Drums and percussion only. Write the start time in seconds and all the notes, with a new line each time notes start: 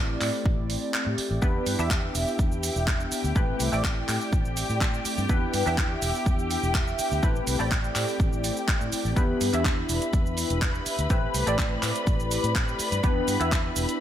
0.21 clap, open hi-hat, tambourine
0.34 tambourine
0.46 kick, tambourine
0.70 open hi-hat, tambourine
0.82 tambourine
0.93 clap, tambourine
1.18 open hi-hat, tambourine
1.31 tambourine
1.42 kick, tambourine, shaker
1.66 open hi-hat, tambourine, shaker
1.79 tambourine, shaker
1.91 kick, clap, shaker
2.15 open hi-hat, tambourine, shaker
2.28 tambourine, shaker
2.39 kick, tambourine, shaker
2.52 shaker
2.63 open hi-hat, tambourine, shaker
2.75 tambourine, shaker
2.87 kick, clap, tambourine, shaker
3.00 shaker
3.12 open hi-hat, tambourine, shaker
3.23 tambourine, shaker
3.36 kick, tambourine, shaker
3.59 open hi-hat, tambourine, shaker
3.73 tambourine, shaker
3.84 kick, clap, shaker
4.08 clap, open hi-hat, tambourine, shaker
4.21 tambourine, shaker
4.33 kick, shaker
4.45 shaker
4.57 open hi-hat, tambourine, shaker
4.70 tambourine, shaker
4.81 kick, clap, shaker
4.94 shaker
5.05 open hi-hat, tambourine, shaker
5.18 tambourine, shaker
5.29 kick, tambourine, shaker
5.53 open hi-hat, tambourine, shaker
5.66 tambourine, shaker
5.78 kick, clap, shaker
6.02 open hi-hat, tambourine, shaker
6.15 tambourine, shaker
6.26 kick, tambourine, shaker
6.39 shaker
6.51 open hi-hat, tambourine, shaker
6.63 tambourine, shaker
6.75 kick, clap, shaker
6.87 shaker
6.99 open hi-hat, tambourine, shaker
7.12 tambourine, shaker
7.23 kick, tambourine, shaker
7.36 shaker
7.47 open hi-hat, tambourine, shaker
7.60 tambourine, shaker
7.71 kick, clap, shaker
7.84 shaker
7.96 clap, open hi-hat, tambourine, shaker
8.08 tambourine, shaker
8.20 kick, shaker
8.33 shaker
8.44 open hi-hat, tambourine, shaker
8.56 tambourine, shaker
8.68 kick, clap, shaker
8.81 shaker
8.92 open hi-hat, tambourine, shaker
9.05 tambourine, shaker
9.17 kick, closed hi-hat, tambourine, shaker
9.41 open hi-hat, tambourine, shaker
9.54 closed hi-hat, tambourine, shaker
9.65 kick, clap, closed hi-hat, shaker
9.89 open hi-hat, tambourine, shaker
10.01 closed hi-hat, tambourine, shaker
10.13 kick, closed hi-hat, tambourine, shaker
10.26 shaker
10.37 open hi-hat, tambourine, shaker
10.50 closed hi-hat, tambourine, shaker
10.62 kick, clap, closed hi-hat, shaker
10.75 shaker
10.86 open hi-hat, tambourine, shaker
10.99 closed hi-hat, tambourine, shaker
11.10 kick, closed hi-hat, shaker
11.34 open hi-hat, tambourine, shaker
11.47 closed hi-hat, tambourine, shaker
11.57 kick, clap, closed hi-hat, tambourine, shaker
11.83 clap, open hi-hat, tambourine, shaker
11.96 closed hi-hat, tambourine, shaker
12.07 kick, closed hi-hat, tambourine, shaker
12.20 shaker
12.31 open hi-hat, tambourine, shaker
12.44 closed hi-hat, tambourine, shaker
12.55 kick, clap, closed hi-hat, shaker
12.68 shaker
12.79 open hi-hat, tambourine, shaker
12.92 closed hi-hat, tambourine, shaker
13.04 kick, closed hi-hat, shaker
13.28 open hi-hat, tambourine, shaker
13.40 closed hi-hat, tambourine, shaker
13.52 kick, clap, closed hi-hat, shaker
13.76 open hi-hat, tambourine, shaker
13.89 closed hi-hat, tambourine, shaker